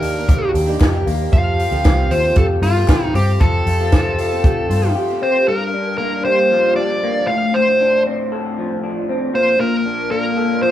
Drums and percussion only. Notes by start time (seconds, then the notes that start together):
0.02 open hi-hat
0.29 kick, closed hi-hat
0.55 open hi-hat
0.81 kick, snare, clap, closed hi-hat
1.07 open hi-hat
1.33 kick, closed hi-hat
1.59 open hi-hat
1.85 kick, snare, clap, closed hi-hat
2.11 open hi-hat
2.36 kick, closed hi-hat
2.63 open hi-hat
2.88 kick, snare, clap, closed hi-hat
3.15 open hi-hat
3.41 kick, closed hi-hat
3.67 open hi-hat
3.92 kick, snare, clap, closed hi-hat
4.18 open hi-hat
4.44 kick, closed hi-hat
4.71 open hi-hat